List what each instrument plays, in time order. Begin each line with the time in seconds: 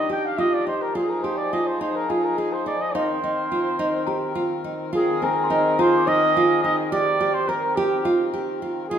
Already playing: harmonium D#3 D4 G4, flugelhorn D#5
0.09 nylon-string guitar G4, flugelhorn G5
0.26 flugelhorn F5
0.38 nylon-string guitar F4, flugelhorn D#5
0.53 flugelhorn D5
0.67 nylon-string guitar D#4, flugelhorn C5
0.82 flugelhorn A#4
0.95 harmonium F3 D#4 G#4, nylon-string guitar F4, flugelhorn G#4
1.09 flugelhorn A#4
1.23 nylon-string guitar G4, flugelhorn C5
1.37 flugelhorn D5
1.53 nylon-string guitar F4, flugelhorn D#5
1.67 flugelhorn C5
1.81 nylon-string guitar D#4, flugelhorn C5
1.96 flugelhorn A#4
2.09 nylon-string guitar F4, flugelhorn G#4, celesta G#5
2.24 flugelhorn A#4
2.38 nylon-string guitar F4, flugelhorn G#4
2.53 flugelhorn C5
2.66 nylon-string guitar D#4, flugelhorn D5
2.81 flugelhorn D#5
2.93 harmonium D#3 C4 A#4, nylon-string guitar D#4, flugelhorn C5, celesta F5
3.24 nylon-string guitar D#4
3.52 nylon-string guitar F4
3.79 nylon-string guitar D#4
4.07 nylon-string guitar G4, celesta A#5
4.35 nylon-string guitar F4
4.64 nylon-string guitar D#4
4.93 harmonium D#3 C4 G#4 A#4, nylon-string guitar F4, flugelhorn G#4
5.22 nylon-string guitar C4, flugelhorn A#4, celesta G#5
5.44 celesta C6
5.50 nylon-string guitar D#4
5.79 nylon-string guitar F4, flugelhorn C5, celesta A#5
5.98 celesta D6
6.07 nylon-string guitar D#4, flugelhorn D#5
6.17 celesta F6
6.37 nylon-string guitar F4
6.64 nylon-string guitar D#4, flugelhorn D#5
6.92 harmonium C4, nylon-string guitar G4, flugelhorn D5
7.20 nylon-string guitar G4
7.34 flugelhorn C5
7.49 nylon-string guitar A#4, flugelhorn A#4
7.76 flugelhorn G4, nylon-string guitar G4
8.05 nylon-string guitar F4
8.34 nylon-string guitar G4
8.62 nylon-string guitar F4
8.89 harmonium F3 G#3 D#4, nylon-string guitar F4, flugelhorn G#4